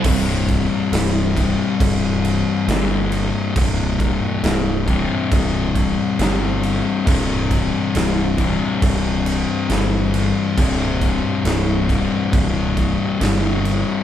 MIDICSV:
0, 0, Header, 1, 4, 480
1, 0, Start_track
1, 0, Tempo, 877193
1, 29, Time_signature, 4, 2, 24, 8
1, 7679, End_track
2, 0, Start_track
2, 0, Title_t, "Distorted electric guitar"
2, 0, Program_c, 0, 30
2, 22, Note_on_c, 0, 36, 109
2, 29, Note_on_c, 0, 43, 105
2, 32, Note_on_c, 0, 48, 118
2, 735, Note_off_c, 0, 43, 0
2, 745, Note_off_c, 0, 48, 0
2, 747, Note_on_c, 0, 48, 83
2, 754, Note_on_c, 0, 43, 87
2, 756, Note_off_c, 0, 36, 0
2, 758, Note_on_c, 0, 36, 75
2, 1457, Note_off_c, 0, 43, 0
2, 1463, Note_off_c, 0, 36, 0
2, 1465, Note_on_c, 0, 36, 77
2, 1472, Note_on_c, 0, 43, 92
2, 1475, Note_off_c, 0, 48, 0
2, 1477, Note_on_c, 0, 48, 87
2, 1936, Note_off_c, 0, 43, 0
2, 1944, Note_off_c, 0, 36, 0
2, 1946, Note_on_c, 0, 36, 105
2, 1954, Note_on_c, 0, 43, 99
2, 1956, Note_off_c, 0, 48, 0
2, 1959, Note_on_c, 0, 48, 112
2, 2656, Note_off_c, 0, 43, 0
2, 2665, Note_off_c, 0, 48, 0
2, 2667, Note_on_c, 0, 48, 93
2, 2673, Note_on_c, 0, 43, 86
2, 2676, Note_off_c, 0, 36, 0
2, 2678, Note_on_c, 0, 36, 72
2, 3376, Note_off_c, 0, 43, 0
2, 3386, Note_off_c, 0, 36, 0
2, 3389, Note_on_c, 0, 36, 83
2, 3391, Note_on_c, 0, 43, 92
2, 3396, Note_off_c, 0, 48, 0
2, 3398, Note_on_c, 0, 48, 98
2, 3855, Note_off_c, 0, 43, 0
2, 3860, Note_off_c, 0, 36, 0
2, 3863, Note_on_c, 0, 36, 101
2, 3872, Note_on_c, 0, 43, 105
2, 3874, Note_off_c, 0, 48, 0
2, 3876, Note_on_c, 0, 48, 110
2, 4575, Note_off_c, 0, 43, 0
2, 4584, Note_off_c, 0, 48, 0
2, 4587, Note_on_c, 0, 48, 96
2, 4591, Note_on_c, 0, 43, 82
2, 4594, Note_off_c, 0, 36, 0
2, 4596, Note_on_c, 0, 36, 78
2, 5295, Note_off_c, 0, 43, 0
2, 5303, Note_off_c, 0, 36, 0
2, 5305, Note_on_c, 0, 36, 82
2, 5313, Note_on_c, 0, 43, 89
2, 5316, Note_off_c, 0, 48, 0
2, 5318, Note_on_c, 0, 48, 82
2, 5776, Note_off_c, 0, 43, 0
2, 5783, Note_off_c, 0, 36, 0
2, 5785, Note_on_c, 0, 36, 102
2, 5792, Note_on_c, 0, 43, 109
2, 5794, Note_off_c, 0, 48, 0
2, 5796, Note_on_c, 0, 48, 108
2, 6495, Note_off_c, 0, 43, 0
2, 6502, Note_off_c, 0, 48, 0
2, 6504, Note_on_c, 0, 48, 84
2, 6512, Note_on_c, 0, 43, 90
2, 6515, Note_off_c, 0, 36, 0
2, 6518, Note_on_c, 0, 36, 75
2, 7216, Note_off_c, 0, 43, 0
2, 7222, Note_off_c, 0, 36, 0
2, 7224, Note_on_c, 0, 36, 76
2, 7229, Note_on_c, 0, 43, 79
2, 7234, Note_off_c, 0, 48, 0
2, 7236, Note_on_c, 0, 48, 86
2, 7679, Note_off_c, 0, 36, 0
2, 7679, Note_off_c, 0, 43, 0
2, 7679, Note_off_c, 0, 48, 0
2, 7679, End_track
3, 0, Start_track
3, 0, Title_t, "Picked electric bass"
3, 0, Program_c, 1, 34
3, 25, Note_on_c, 1, 24, 99
3, 364, Note_off_c, 1, 24, 0
3, 505, Note_on_c, 1, 24, 103
3, 844, Note_off_c, 1, 24, 0
3, 986, Note_on_c, 1, 24, 97
3, 1324, Note_off_c, 1, 24, 0
3, 1466, Note_on_c, 1, 31, 102
3, 1804, Note_off_c, 1, 31, 0
3, 1949, Note_on_c, 1, 24, 105
3, 2286, Note_off_c, 1, 24, 0
3, 2427, Note_on_c, 1, 24, 99
3, 2765, Note_off_c, 1, 24, 0
3, 2909, Note_on_c, 1, 24, 97
3, 3246, Note_off_c, 1, 24, 0
3, 3389, Note_on_c, 1, 31, 102
3, 3726, Note_off_c, 1, 31, 0
3, 3868, Note_on_c, 1, 24, 101
3, 4205, Note_off_c, 1, 24, 0
3, 4351, Note_on_c, 1, 24, 108
3, 4687, Note_off_c, 1, 24, 0
3, 4826, Note_on_c, 1, 24, 96
3, 5164, Note_off_c, 1, 24, 0
3, 5305, Note_on_c, 1, 31, 102
3, 5643, Note_off_c, 1, 31, 0
3, 5787, Note_on_c, 1, 24, 94
3, 6125, Note_off_c, 1, 24, 0
3, 6263, Note_on_c, 1, 24, 95
3, 6603, Note_off_c, 1, 24, 0
3, 6747, Note_on_c, 1, 24, 101
3, 7085, Note_off_c, 1, 24, 0
3, 7228, Note_on_c, 1, 31, 99
3, 7566, Note_off_c, 1, 31, 0
3, 7679, End_track
4, 0, Start_track
4, 0, Title_t, "Drums"
4, 23, Note_on_c, 9, 49, 126
4, 23, Note_on_c, 9, 57, 108
4, 25, Note_on_c, 9, 36, 127
4, 78, Note_off_c, 9, 49, 0
4, 78, Note_off_c, 9, 57, 0
4, 79, Note_off_c, 9, 36, 0
4, 265, Note_on_c, 9, 36, 91
4, 266, Note_on_c, 9, 57, 73
4, 320, Note_off_c, 9, 36, 0
4, 320, Note_off_c, 9, 57, 0
4, 508, Note_on_c, 9, 57, 99
4, 521, Note_on_c, 9, 38, 114
4, 563, Note_off_c, 9, 57, 0
4, 576, Note_off_c, 9, 38, 0
4, 747, Note_on_c, 9, 36, 82
4, 750, Note_on_c, 9, 57, 73
4, 802, Note_off_c, 9, 36, 0
4, 804, Note_off_c, 9, 57, 0
4, 987, Note_on_c, 9, 36, 108
4, 989, Note_on_c, 9, 57, 94
4, 1042, Note_off_c, 9, 36, 0
4, 1043, Note_off_c, 9, 57, 0
4, 1229, Note_on_c, 9, 57, 71
4, 1284, Note_off_c, 9, 57, 0
4, 1469, Note_on_c, 9, 57, 91
4, 1482, Note_on_c, 9, 38, 120
4, 1524, Note_off_c, 9, 57, 0
4, 1536, Note_off_c, 9, 38, 0
4, 1706, Note_on_c, 9, 57, 68
4, 1761, Note_off_c, 9, 57, 0
4, 1948, Note_on_c, 9, 36, 126
4, 1948, Note_on_c, 9, 57, 100
4, 2003, Note_off_c, 9, 36, 0
4, 2003, Note_off_c, 9, 57, 0
4, 2188, Note_on_c, 9, 36, 100
4, 2188, Note_on_c, 9, 57, 63
4, 2243, Note_off_c, 9, 36, 0
4, 2243, Note_off_c, 9, 57, 0
4, 2428, Note_on_c, 9, 57, 88
4, 2440, Note_on_c, 9, 38, 125
4, 2482, Note_off_c, 9, 57, 0
4, 2495, Note_off_c, 9, 38, 0
4, 2668, Note_on_c, 9, 36, 91
4, 2670, Note_on_c, 9, 57, 67
4, 2723, Note_off_c, 9, 36, 0
4, 2725, Note_off_c, 9, 57, 0
4, 2909, Note_on_c, 9, 36, 108
4, 2909, Note_on_c, 9, 57, 84
4, 2964, Note_off_c, 9, 36, 0
4, 2964, Note_off_c, 9, 57, 0
4, 3149, Note_on_c, 9, 36, 93
4, 3150, Note_on_c, 9, 57, 75
4, 3204, Note_off_c, 9, 36, 0
4, 3205, Note_off_c, 9, 57, 0
4, 3389, Note_on_c, 9, 57, 90
4, 3401, Note_on_c, 9, 38, 120
4, 3443, Note_off_c, 9, 57, 0
4, 3456, Note_off_c, 9, 38, 0
4, 3629, Note_on_c, 9, 57, 74
4, 3684, Note_off_c, 9, 57, 0
4, 3869, Note_on_c, 9, 36, 122
4, 3869, Note_on_c, 9, 57, 101
4, 3924, Note_off_c, 9, 36, 0
4, 3924, Note_off_c, 9, 57, 0
4, 4108, Note_on_c, 9, 36, 91
4, 4109, Note_on_c, 9, 57, 74
4, 4163, Note_off_c, 9, 36, 0
4, 4164, Note_off_c, 9, 57, 0
4, 4349, Note_on_c, 9, 57, 90
4, 4362, Note_on_c, 9, 38, 118
4, 4404, Note_off_c, 9, 57, 0
4, 4416, Note_off_c, 9, 38, 0
4, 4586, Note_on_c, 9, 57, 76
4, 4588, Note_on_c, 9, 36, 90
4, 4641, Note_off_c, 9, 57, 0
4, 4642, Note_off_c, 9, 36, 0
4, 4827, Note_on_c, 9, 57, 98
4, 4828, Note_on_c, 9, 36, 107
4, 4882, Note_off_c, 9, 57, 0
4, 4883, Note_off_c, 9, 36, 0
4, 5068, Note_on_c, 9, 57, 75
4, 5123, Note_off_c, 9, 57, 0
4, 5306, Note_on_c, 9, 57, 88
4, 5319, Note_on_c, 9, 38, 109
4, 5361, Note_off_c, 9, 57, 0
4, 5373, Note_off_c, 9, 38, 0
4, 5547, Note_on_c, 9, 57, 72
4, 5602, Note_off_c, 9, 57, 0
4, 5787, Note_on_c, 9, 36, 121
4, 5788, Note_on_c, 9, 57, 101
4, 5842, Note_off_c, 9, 36, 0
4, 5843, Note_off_c, 9, 57, 0
4, 6027, Note_on_c, 9, 36, 94
4, 6028, Note_on_c, 9, 57, 71
4, 6082, Note_off_c, 9, 36, 0
4, 6083, Note_off_c, 9, 57, 0
4, 6266, Note_on_c, 9, 57, 89
4, 6279, Note_on_c, 9, 38, 119
4, 6321, Note_off_c, 9, 57, 0
4, 6334, Note_off_c, 9, 38, 0
4, 6508, Note_on_c, 9, 36, 88
4, 6510, Note_on_c, 9, 57, 70
4, 6562, Note_off_c, 9, 36, 0
4, 6565, Note_off_c, 9, 57, 0
4, 6748, Note_on_c, 9, 36, 113
4, 6749, Note_on_c, 9, 57, 86
4, 6802, Note_off_c, 9, 36, 0
4, 6803, Note_off_c, 9, 57, 0
4, 6988, Note_on_c, 9, 36, 86
4, 6988, Note_on_c, 9, 57, 67
4, 7042, Note_off_c, 9, 36, 0
4, 7042, Note_off_c, 9, 57, 0
4, 7229, Note_on_c, 9, 57, 88
4, 7242, Note_on_c, 9, 38, 112
4, 7284, Note_off_c, 9, 57, 0
4, 7296, Note_off_c, 9, 38, 0
4, 7470, Note_on_c, 9, 57, 67
4, 7525, Note_off_c, 9, 57, 0
4, 7679, End_track
0, 0, End_of_file